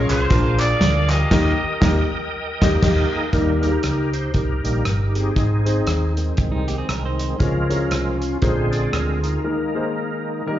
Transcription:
Already playing: C#4 F4 G#4 C#5 D#5 F5 C#6
0.10 C2 F4 G#4 C5, clap, closed hi-hat
0.30 A#1 A#2 D4 F4 G#4 A#4 G#5 D6, kick, closed hi-hat
0.59 F4 G#4 D5, clap, closed hi-hat
0.80 D2, snare, closed hi-hat
1.09 G4 A#4 D#5, snare, clap, closed hi-hat
1.30 D#2 D#3 A#3 D#4 G4 A#4 D#5 G5 D#6, kick, snare, crash
1.81 D#2 A#3 D#4 A#4, kick, snare
1.88 G4
2.62 D#2 A#3 D#4 G4 D#5, kick, snare
2.82 D#2 G4 D#5, kick, snare, crash
3.13 G#4
3.33 D#2 D#3 G3 A#3 D#4 G4 A#4, kick, closed hi-hat
3.62 A#3 D#4 G4 G#4, closed hi-hat
3.69 A#4
3.83 C#2, cross-stick, closed hi-hat
4.13 C5, closed hi-hat
4.34 C2 D#4 G4 A#4, kick, closed hi-hat
4.64 A#1 D#3 G3 A#3, closed hi-hat
4.85 G1, cross-stick, closed hi-hat
5.15 C4 D#4 G#4, closed hi-hat
5.36 G#1 G#2 C4 D#4 G#4 C5, kick, closed hi-hat
5.65 C4 D#4 G#4 C5, closed hi-hat
5.87 D#2, cross-stick, closed hi-hat
6.17 D#3 G#3 C4, closed hi-hat
6.37 C2, kick, cross-stick, closed hi-hat
6.52 G3 D#4
6.68 A#3 G4, closed hi-hat
6.78 C4 G#4
6.89 C2 A#4, cross-stick, closed hi-hat
7.05 D#4 C5
7.19 cross-stick, closed hi-hat
7.39 C#2 C#3 F3 G#3 C#4 F4 G#4 A#4 C#5, kick, closed hi-hat
7.70 C#4 E4 G#4 A#4, closed hi-hat
7.76 F4
7.91 C2, cross-stick, closed hi-hat
8.22 closed hi-hat
8.42 A#1 A#2 D3 G#3 C4 C#4 F4 G#4 A#4 C5, kick, cross-stick, closed hi-hat
8.48 D4
8.71 D5, closed hi-hat
8.93 D2 A#4, cross-stick, closed hi-hat
9.23 D#4 A#4, closed hi-hat
9.44 D#3 G#3 A#3 D#4 G#4 A#4
9.74 A#3 D#4 G#4 C5
10.46 D#3 G3 A#3 D#4 G4 A#4

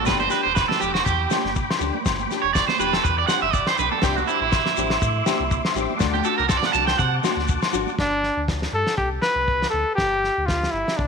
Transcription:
Already playing: D6
0.05 G1 B3 D4 G4 B4 G5 B5, kick, snare, low agogo, shekere
0.20 C5, high conga, shekere
0.30 D4 G4 B4, snare, shekere
0.43 E1 C5
0.55 B4, kick, snare, low agogo, shekere
0.68 A4, snare, high conga
0.80 E1 D4 G4, low conga, shekere
0.94 F#4, snare, low agogo
1.05 E2 G4, kick, shekere
1.31 D4 G4, snare, high conga, low agogo, shekere
1.44 G1, snare
1.55 kick, shekere
1.71 snare, low agogo
1.79 D2 D4 G4, low conga, shekere
1.94 high conga
2.06 G1, kick, snare, low agogo, shekere
2.19 high conga, shekere
2.31 D4 G4, snare, shekere
2.42 E1 C#5
2.53 D5, kick, snare, low agogo, shekere
2.68 C5, snare, high conga
2.79 E1 D4 G4 B4, low conga, shekere
2.93 A4, snare, low agogo
3.04 E2 B4, kick, shekere
3.18 D5
3.27 D4 G4 F#5, snare, high conga, low agogo, shekere
3.42 G1 E5
3.53 D5, kick, shekere
3.67 C5, snare, low agogo
3.78 B1 D4 B4, muted steel-string acoustic guitar stroke, low conga, shekere
3.92 A4, high conga
4.01 C2 E3 C4 D4 G4 E5 C6, kick, snare, low agogo, shekere
4.16 F#4, high conga, shekere
4.26 C4 D4 E4 G4, shekere
4.41 A1 E4
4.52 kick, snare, low agogo, shekere
4.66 snare, high conga
4.77 A1 C4 D4 G4, low conga, shekere
4.90 snare, low agogo
5.02 A2, kick, shekere
5.26 C4 D4 G4, snare, high conga, low agogo, shekere
5.40 C2
5.51 kick, shekere
5.65 snare, low agogo
5.75 A1 C4 D4 G4, low conga, shekere
5.90 high conga
5.96 A3 D4 F#5 A5 D6, shekere
6.00 D2 F#4, kick, snare, low agogo
6.14 G4, high conga, shekere
6.24 D4 F#4 A4, shekere
6.38 C2 A#4, shekere
6.49 A4, kick, snare, low agogo, shekere
6.57 D5
6.63 F#5, snare, high conga, shekere
6.73 C2 D4 F#4 A5, low conga, shekere
6.87 G5, snare, low agogo, shekere
6.99 C3 F#5, kick, shekere
7.23 D4 F#4, snare, high conga, low agogo, shekere
7.36 D2, snare
7.48 kick, shekere
7.62 snare, low agogo, shekere
7.73 G#1 D4 F#4, low conga, shekere
7.87 high conga, shekere
7.99 G1 D4, kick, snare
8.23 snare
8.37 D2
8.48 kick, snare
8.62 snare
8.73 G2 A4
8.87 snare
8.97 C2 G4, kick
9.22 B4, snare
9.35 C2
9.48 kick
9.62 snare
9.70 D2 A4
9.95 G1 G4, kick, snare
10.24 snare
10.38 D2
10.46 F4, kick, snare
10.63 snare
10.71 G1 E4
10.88 snare
10.97 C2 D4, kick

